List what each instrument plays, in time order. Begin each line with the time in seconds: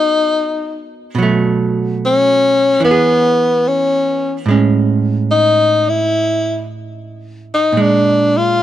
Already playing: hollow-body jazz guitar G#3 B3 F#4 A#4, tenor saxophone D#4
1.15 hollow-body jazz guitar B2 F#3
1.23 hollow-body jazz guitar A3
2.06 tenor saxophone C#4
2.80 hollow-body jazz guitar E3
2.84 hollow-body jazz guitar B3, tenor saxophone B3
2.91 hollow-body jazz guitar G#4
3.68 tenor saxophone C#4
4.46 hollow-body jazz guitar A2 G#3
4.51 hollow-body jazz guitar C#4
5.31 tenor saxophone D#4
5.89 tenor saxophone E4
7.54 tenor saxophone D#4
7.72 hollow-body jazz guitar A#2
7.77 hollow-body jazz guitar G#3
7.81 tenor saxophone D4
8.37 tenor saxophone F4